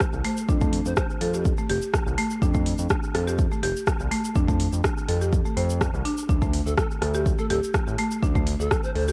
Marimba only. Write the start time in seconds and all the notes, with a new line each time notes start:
0.25 A3
0.49 D4
0.61 A3
1.21 A4
1.34 G4
1.58 A3
1.70 G4
2.18 A3
2.42 D4
2.55 A3
3.15 A4
3.27 G4
3.52 A3
3.63 G4
4.11 A3
4.36 D4
4.48 A3
5.08 A4
5.21 G4
5.45 A3
5.57 C5
6.05 D4
6.29 D4
6.42 A3
7.02 A4
7.15 G4
7.39 A3
7.50 G4
7.99 A3
8.23 D4
8.36 A3
8.96 A4
9.08 G4